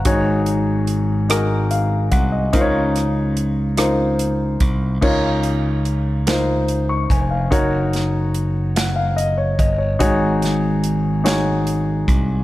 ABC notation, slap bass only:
X:1
M:6/8
L:1/8
Q:3/8=48
K:Db
V:1 name="Slap bass" clef=bass
A,,,4- A,,, C,, | D,,4- D,, C,, | D,,4- D,, F,,, | G,,,4- G,,, =G,,, |
A,,,4- A,,, C,, |]